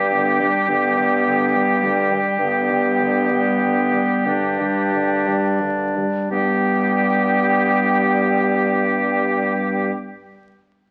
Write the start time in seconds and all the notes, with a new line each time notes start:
Already playing: G2 G3 D4 G4 G5
0.12 D3 B3
0.40 G3 D4
0.68 G2 D3 B3
0.98 G3
1.27 D3
1.56 G3
1.83 D3 G3
2.13 G3
2.39 G2 D3 B3
2.71 G3
3.00 D3
3.31 G3
3.63 D3
3.94 G3
4.26 G2 D3 D4
4.60 G3
4.93 D3
5.28 G3
5.62 D3
5.97 G3
6.31 G2 G3 B3 G4 G5